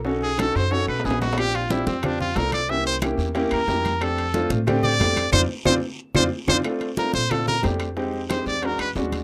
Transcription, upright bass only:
\new Staff \with { instrumentName = "Upright bass" } { \clef bass \time 4/4 \key f \major \tempo 4 = 182 b,,4. fis,4 b,,8 bes,,4~ | bes,,4. f,4. c,4~ | c,4. e,4 e,8 f,4~ | f,4. a,4. f,4 |
f,8 r8 f,8 r4 f,8 r8 f,8 | \key bes \major r4. bes,4. f,4~ | f,4. e,4 e,8 ees,4 | }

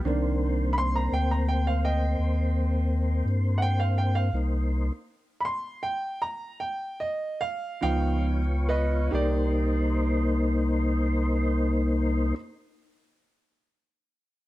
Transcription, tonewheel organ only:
\new Staff \with { instrumentName = "Tonewheel organ" } { \time 12/8 \key c \minor \tempo 4. = 51 <bes c' c''>1. | <bes ees' c''>4 r2. r8 <ces' f' des''>4. | <bes ees' c''>1. | }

